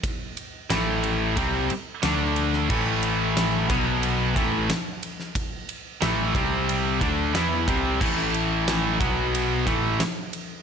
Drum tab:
CC |----------------|x---------------|----------------|x---------------|
RD |x-x-x-x-x-x-x-x-|--x-x-x-x-x-x-x-|x-x-x-x-x-x-x-x-|--x-x-x-x-x-x-x-|
SD |----o-------o--o|----o-------o--o|----o-------o---|-o--o-------o---|
BD |o-------o-------|o-----o---o-----|o-----o---o---o-|o-----o---o-----|